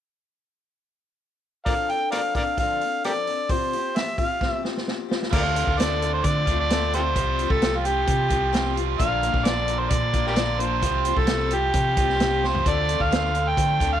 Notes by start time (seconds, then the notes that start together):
1.65 D3 F3 C4 D4 A4 A#4 D5 F5, kick, open hi-hat
1.89 C4 D4 A4 G5, open hi-hat
2.11 F3 C4 D4 A#4 D5 F5, cross-stick, open hi-hat
2.16 A4
2.35 C4 D4 A4 A#4 D5 F5, kick, open hi-hat
2.58 D3 F3 C4 D4 A4 F5, kick, open hi-hat
2.81 D4 A4, open hi-hat
2.85 C4
3.04 F3 C4 D4 G4 A4 A#4 D5, cross-stick, open hi-hat
3.27 C4 D4 A4, open hi-hat
3.49 C3 F3 C4 F4 G4 C5, kick, open hi-hat
3.73 C4 F4 G4, open hi-hat
3.96 F3 C4 F4 G4 E5, snare, open hi-hat
4.18 C4 F4 G4 F5, kick, open hi-hat
4.41 C3 F3 C4 F4 G4, kick, snare
4.50 E5
4.63 C4 F4 G4, snare
4.77 snare
4.88 F3 C4 F4 G4, snare
5.08 C4 F4 G4, snare
5.23 snare
5.33 D2 D3 A3 C4 D4 F4 A4 A#4 D5 F5, kick, crash
5.56 C4 F4 A4, closed hi-hat
5.67 D2, kick
5.77 D3 A3 C4 F4 A4 D5, snare, closed hi-hat
6.01 C4 F4 A4, closed hi-hat
6.14 C5
6.24 D3 A3 C4 F4 A4 D5, kick, closed hi-hat
6.46 D2 A3 D4 F4 A4, kick, closed hi-hat
6.50 D3 C4 F4
6.60 D5
6.70 D3 A3 C4 D4 F4 A4, snare, closed hi-hat
6.93 C4 F4 G4 A4 C5, closed hi-hat
7.15 C2 C3 F3 G3 C4 F4 G4, kick, closed hi-hat
7.39 F4 G4, closed hi-hat
7.43 C4
7.50 C2 A4, kick
7.61 C3 F3 C4 F4 G4, snare, closed hi-hat
7.77 F4
7.85 C4 F4 G4, closed hi-hat
8.07 C3 F3 C4 F4 G4, kick, closed hi-hat
8.29 C2 C3 F3 G3 C4 F4 G4, kick, closed hi-hat
8.53 C3 F3 G3 C4 F4 G4, snare, closed hi-hat
8.74 C4 F4 G4, closed hi-hat
8.98 A#1 A#2 D3 F3 A#3 D4 F4 A#4 F5, kick, closed hi-hat
9.23 F3 A#3 D4 A#4, closed hi-hat
9.33 A#1, kick
9.45 A#2 D3 F3 A#3 D4 A#4 D5, snare, closed hi-hat
9.68 F3 A#3 D4 A#4, closed hi-hat
9.79 C5
9.90 A#2 F3 A#3 D4 A#4 D5, kick, closed hi-hat
10.12 A#1 D3 F3 A#3 D4 F4 A#4, kick, closed hi-hat
10.18 A#2
10.26 G4 A#4 D5, snare
10.35 A#2 D3 F3 A#3 D4 A#4, snare, closed hi-hat
10.41 F4
10.59 F3 A#3 D4 A#4 C5, closed hi-hat
10.81 C2 C3 F3 G3 C4 F4 G4, kick, closed hi-hat
11.05 C4 F4 G4, closed hi-hat
11.17 C2 A4, kick
11.27 C3 F3 C4 F4 G4, snare, closed hi-hat
11.51 C4 F4 G4, closed hi-hat
11.73 C3 F3 C4 F4 G4, kick, closed hi-hat
11.97 C2 C3 F3 G3 F4 G4, kick, closed hi-hat
12.02 C4
12.09 snare
12.20 C3 F3 G3 C4 F4 G4, snare, closed hi-hat
12.44 C4 F4 G4 C5, snare
12.54 floor tom
12.66 D2 D3 F3 A3 C4 D4 F4 A4 D5, kick, closed hi-hat
12.88 C4 D4 A4, closed hi-hat
13.00 D2 F5, kick
13.11 D3 F3 C4 D4 A4, snare, closed hi-hat
13.34 C4 D4 A4, closed hi-hat
13.48 G5
13.57 D3 F3 C4 D4 A4, kick, closed hi-hat
13.79 D2 A3 C4 D4 F4 A4, kick, closed hi-hat
13.83 D3
13.93 F5